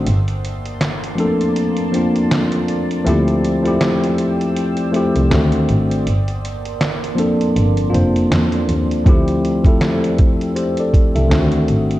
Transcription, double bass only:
X:1
M:4/4
L:1/16
Q:"Swing 16ths" 1/4=80
K:Dm
V:1 name="Double bass" clef=bass
G,,,6- G,,, z8 z | D,,4 z6 z C,, D,,2 ^G,,,2 | G,,,6- G,,, z G,,,2 F,,,2 E,,2 _E,,2 | D,,4 z6 z C,, D,,2 ^G,,,2 |]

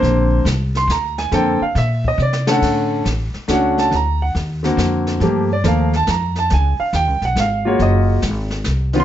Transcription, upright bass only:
X:1
M:3/4
L:1/8
Q:"Swing" 1/4=139
K:Dphr
V:1 name="Upright bass" clef=bass
B,,,2 C,,2 D,,2 | F,, z B,,2 C,2 | A,,2 A,,, z ^C,,2 | D,,2 E,,2 ^E,,2 |
G,,2 E,,2 F,,2 | _D,, z (3E,, D,, _C,, _A,,,2 | _G,,,2 _A,,,2 C,,2 |]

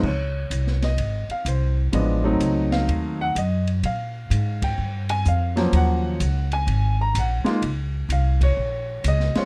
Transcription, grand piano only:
X:1
M:4/4
L:1/8
Q:"Swing" 1/4=126
K:Dblyd
V:1 name="Grand piano"
d3 e2 f c z | e3 f2 _g e z | f3 g2 a f z | _g3 a2 b g z |
z2 f d3 e d |]
V:2 name="Grand piano"
z8 | [F,A,_C=D] [_G,=A,=CE]4 z3 | z6 z [F,_G,B,D]- | [F,_G,B,D]2 z4 z [A,B,EF] |
z6 z [A,CDF] |]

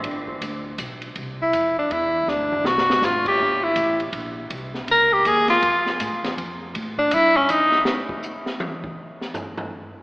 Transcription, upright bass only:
X:1
M:3/4
L:1/8
Q:"Swing" 1/4=161
K:Gdor
V:1 name="Upright bass" clef=bass
G,,,2 D,,2 =B,,,2 | C,,2 F,,2 E,,2 | D,,2 ^B,,,2 ^G,,,2 | G,,,2 A,,,2 B,,,2 |
C,,2 ^C,,2 _E,,2 | F,,2 (3A,, F,, E,, F,,2 | A,,2 G,,2 F,,2 | [K:Bbm] z6 |
z6 |]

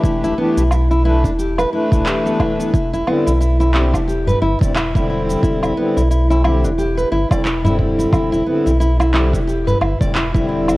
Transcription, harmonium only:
X:1
M:4/4
L:1/16
Q:"Swing 16ths" 1/4=89
K:Em
V:1 name="Harmonium"
[E,A,DG]2 [E,A,DG] z3 [E,A,DB] z3 [E,A,DB]6 | z2 [D,G,CE] z3 [D,G,CG] z4 [D,G,CE] z [D,G,CE]3- | [D,G,CE]2 [D,G,CE] z3 [D,G,CG] z4 [D,G,CE] z [D,G,CE]3- | [D,G,CE]2 [D,G,CE] z3 [D,G,CG] z4 [D,G,CE] z [D,G,CE]3 |]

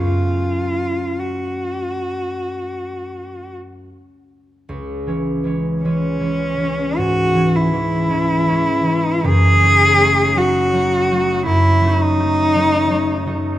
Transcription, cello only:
X:1
M:4/4
L:1/8
Q:1/4=53
K:F#m
V:1 name="Cello"
^E2 F4 z2 | [K:C#m] z2 C2 F E3 | G2 F2 E D3 |]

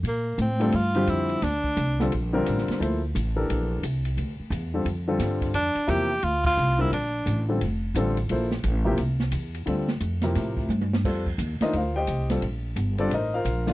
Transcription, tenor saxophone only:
X:1
M:4/4
L:1/8
Q:"Swing" 1/4=175
K:Bblyd
V:1 name="Tenor saxophone"
B,2 C2 F2 E2 | D4 z4 | z8 | z8 |
D2 G2 F F2 E | D3 z4 z | z8 | z8 |
[K:Fmix] z8 | z8 |]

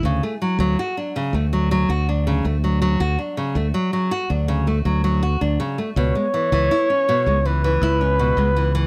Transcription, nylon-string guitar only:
X:1
M:4/4
L:1/16
Q:1/4=81
K:Dlyd
V:1 name="Nylon-string guitar" clef=bass
C, A, F, F, F D C, A, F, F, F D C, A, F, F, | F D C, A, F, F, F D C, A, F, F, F D C, A, | B,, G, E, E, E C B,, G, E, E, E C B,, G, E, E, |]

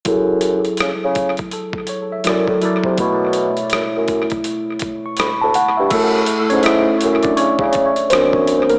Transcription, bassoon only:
X:1
M:4/4
L:1/16
Q:"Swing 16ths" 1/4=82
K:Bm
V:1 name="Bassoon" clef=bass
F,,4 C, C,2 z4 z F,, A,, z ^B,, | B,,4 F,, F,,2 z4 z D,, D,, z G,, | F,,2 z ^G,,3 F,,2 C, C,2 z F,,4 |]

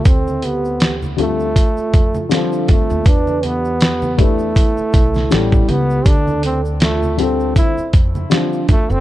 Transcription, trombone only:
X:1
M:4/4
L:1/16
Q:"Swing 16ths" 1/4=80
K:Ddor
V:1 name="Trombone"
C2 B,3 z A,6 F,2 A,2 | D2 B,4 A,6 G,2 B,2 | D2 C2 A,2 C2 E2 z2 F,2 A, C |]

